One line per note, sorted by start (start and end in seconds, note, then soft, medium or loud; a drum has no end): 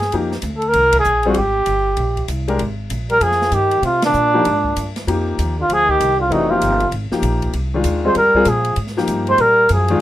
0.00 0.12 G2 medium
0.00 0.15 G#4 medium
0.00 snare soft
0.12 0.42 F2 medium
0.12 0.31 F3 medium
0.12 0.31 A#3 medium
0.12 0.31 D#4 medium
0.12 0.31 G4 medium
0.12 ride medium
0.32 snare soft
0.42 0.73 D2 medium
0.42 hi-hat pedal medium
0.42 ride medium
0.57 0.70 A4 medium
0.62 ride soft
0.68 0.97 A#4 loud
0.73 1.04 C2 medium
0.73 ride medium
0.92 kick medium
0.92 ride medium
0.99 1.26 G#4 medium
1.04 1.35 A#1 medium
1.04 hi-hat pedal medium
1.23 1.36 G3 medium
1.23 1.35 C4 medium
1.23 1.36 F4 medium
1.23 1.36 G#4 medium
1.23 ride soft
1.28 2.27 G4 medium
1.34 1.66 G#1 medium
1.34 ride medium
1.66 1.96 G1 medium
1.66 hi-hat pedal medium
1.66 ride medium
1.97 2.28 A#1 medium
1.97 ride medium
2.17 kick soft
2.17 ride soft
2.28 2.59 C2 medium
2.28 hi-hat pedal medium
2.28 ride medium
2.48 2.58 G#3 medium
2.48 2.59 D4 medium
2.48 2.59 G4 medium
2.48 2.59 A#4 medium
2.48 ride soft
2.59 2.90 G#1 medium
2.59 ride medium
2.90 3.20 A#1 medium
2.90 hi-hat pedal medium
2.90 ride medium
3.09 3.22 G3 medium
3.09 3.24 A#4 loud
3.09 ride soft
3.20 3.51 F2 medium
3.20 3.54 F3 medium
3.20 3.56 G#4 medium
3.20 ride medium
3.31 snare soft
3.42 snare soft
3.52 3.82 G2 medium
3.52 3.82 D#3 medium
3.52 3.84 G4 medium
3.52 hi-hat pedal medium
3.52 ride medium
3.71 ride medium
3.82 4.01 C3 medium
3.82 4.13 C3 medium
3.82 4.02 F4 medium
3.82 ride medium
4.02 4.91 A#2 medium
4.02 4.93 D4 medium
4.02 snare medium
4.02 ride medium
4.13 4.44 A#2 medium
4.13 hi-hat pedal medium
4.34 4.44 F3 medium
4.34 4.44 A#3 medium
4.34 4.45 D#4 medium
4.34 4.45 G4 medium
4.45 4.76 G#2 medium
4.45 ride medium
4.65 kick medium
4.76 5.07 G2 medium
4.76 hi-hat pedal medium
4.76 ride medium
4.96 snare soft
4.96 ride soft
5.07 5.37 F2 medium
5.07 5.54 F3 medium
5.07 5.54 A#3 medium
5.07 5.54 D#4 medium
5.07 5.54 G4 medium
5.07 ride medium
5.39 5.68 D#2 medium
5.39 hi-hat pedal medium
5.39 ride medium
5.58 5.69 D3 medium
5.58 5.74 F4 medium
5.67 5.99 D2 medium
5.67 5.89 F3 medium
5.67 ride medium
5.73 5.92 G#4 loud
5.87 6.17 D#3 medium
5.87 6.20 G4 loud
5.87 kick medium
6.00 6.30 C2 medium
6.00 hi-hat pedal medium
6.00 ride medium
6.17 6.29 D3 medium
6.17 6.34 F4 medium
6.28 6.60 F1 medium
6.28 6.49 C3 medium
6.28 6.48 E3 medium
6.28 6.48 A3 medium
6.28 6.49 D4 medium
6.28 6.49 F#4 medium
6.28 ride medium
6.32 6.52 D#4 medium
6.49 6.92 C3 medium
6.49 6.77 F3 medium
6.49 6.77 A#3 medium
6.49 6.78 D#4 medium
6.49 6.92 F4 medium
6.49 6.78 G4 medium
6.61 6.91 G1 medium
6.61 hi-hat pedal medium
6.61 ride medium
6.80 ride soft
6.91 7.10 G#1 medium
6.91 ride medium
7.11 7.52 F3 medium
7.11 7.52 A#3 medium
7.11 7.52 D#4 medium
7.11 7.52 G4 medium
7.11 muted upright bass stroke soft
7.11 snare soft
7.22 7.53 A#1 medium
7.22 hi-hat pedal soft
7.22 ride medium
7.42 kick soft
7.42 ride soft
7.53 7.84 C2 medium
7.53 ride medium
7.74 8.03 D#3 medium
7.74 8.03 G#3 medium
7.74 8.03 D4 medium
7.74 8.04 F4 medium
7.84 8.15 D#2 medium
7.84 hi-hat pedal medium
7.84 ride medium
8.04 8.15 G3 medium
8.04 8.14 G#3 medium
8.04 8.15 C4 medium
8.04 8.15 F4 medium
8.04 8.15 G#4 medium
8.04 8.16 C5 medium
8.14 8.34 F2 medium
8.14 8.50 G3 medium
8.14 8.50 A#4 medium
8.14 ride medium
8.34 8.45 G3 medium
8.34 8.45 C4 medium
8.34 8.46 F4 medium
8.34 8.46 G#4 medium
8.34 muted upright bass stroke soft
8.34 kick medium
8.45 8.76 A#2 medium
8.45 8.78 F3 medium
8.45 8.79 G#4 medium
8.45 hi-hat pedal medium
8.45 ride medium
8.65 ride soft
8.76 9.07 G#2 medium
8.76 ride medium
8.87 snare soft
8.97 9.37 F3 medium
8.97 9.37 A#3 medium
8.97 9.37 D#4 medium
8.97 9.38 G4 medium
8.97 snare soft
9.08 9.38 G2 medium
9.08 hi-hat pedal medium
9.08 ride medium
9.27 9.41 G#3 medium
9.27 9.42 C5 loud
9.27 ride soft
9.38 9.69 A#2 medium
9.38 9.70 G3 medium
9.38 9.71 A#4 medium
9.38 ride medium
9.69 10.00 F#2 loud
9.69 9.99 F3 medium
9.69 10.00 G#4 medium
9.69 hi-hat pedal medium
9.69 ride medium
9.88 10.00 D#3 medium
9.88 10.00 G#3 medium
9.88 10.00 D4 medium
9.88 10.01 F4 medium
9.88 ride soft